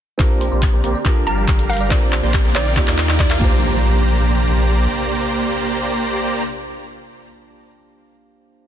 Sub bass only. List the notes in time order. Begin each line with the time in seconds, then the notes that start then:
0.19 A#1
0.52 A#1
0.73 A#1
0.84 A#1
1.27 G1
1.48 G1
1.91 A#1
2.23 A#1
2.44 A#1
2.55 A#1
2.87 D#2
3.41 A#1